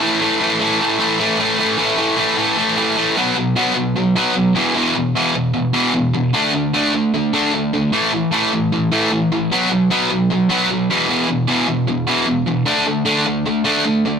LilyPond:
\new Staff \with { instrumentName = "Distorted electric guitar" } { \clef bass \time 4/4 \key a \lydian \tempo 4 = 152 <a, e a>8 <a, e a>8 <a, e a>8 <a, e a>8 <a, e a>8 <a, e a>8 <a, e a>8 <a, e a>8 | <a, e a>8 <a, e a>8 <a, e a>8 <a, e a>8 <a, e a>8 <a, e a>8 <a, e a>8 <a, e a>8 | <b, fis b>8 <b, fis>8 <b, fis b>8 <b, fis>8 <b, fis>8 <b, fis b>8 <b, fis>8 <e, b, e>8 | <e, b, e>8 <e, b,>8 <e, b, e>8 <e, b,>8 <e, b,>8 <e, b, e>8 <e, b,>8 <e, b,>8 |
<d a d'>8 <d a>8 <d a d'>8 <d a>8 <d a>8 <d a d'>8 <d a>8 <d a>8 | <a, e a>8 <a, e>8 <a, e a>8 <a, e>8 <a, e>8 <a, e a>8 <a, e>8 <a, e>8 | <b, fis b>8 <b, fis>8 <b, fis b>8 <b, fis>8 <b, fis>8 <b, fis b>8 <b, fis>8 <e, b, e>8 | <e, b, e>8 <e, b,>8 <e, b, e>8 <e, b,>8 <e, b,>8 <e, b, e>8 <e, b,>8 <e, b,>8 |
<d a d'>8 <d a>8 <d a d'>8 <d a>8 <d a>8 <d a d'>8 <d a>8 <d a>8 | }